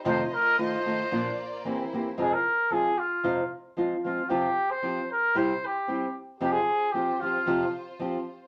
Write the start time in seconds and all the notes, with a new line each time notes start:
0.05 F2 C3 D#3 A3 D#4 F4 C5 D#5
0.25 C5
0.34 A#4
0.58 D#3 A3 D#4 F4 C5
0.85 D#3 A3 D#4 F4
1.11 A#2 F3 A#3 D4 F4 D5
1.65 E3 A#3 C4 E4 G4 C5
1.93 E3 A#3 C4 G4
2.18 F2 C3 F3 G#3 C4 F4 G#4
2.33 A#4
2.70 F3 G#3 C4 F4 G#4
2.98 F4
3.23 F2 C3 F3 G#3 C4 F4
3.77 F3 G#3 C4 F4
4.04 F3 G#3 C4 F4
4.29 C3 F3 C4 F4 G4
4.71 C5
4.82 F3 C4 F4 G4
5.12 A#4
5.34 C3 G3 C4 E4 G4 C5
5.66 G4
5.88 G3 C4 E4 G4
6.39 F2 C3 F3 C4 F4 G4 C5
6.51 G#4
6.92 F3 C4 F4 G4
7.20 F3 C4 F4 G4
7.46 F2 C3 F3 C4 F4 G4
7.99 F3 C4 F4 G4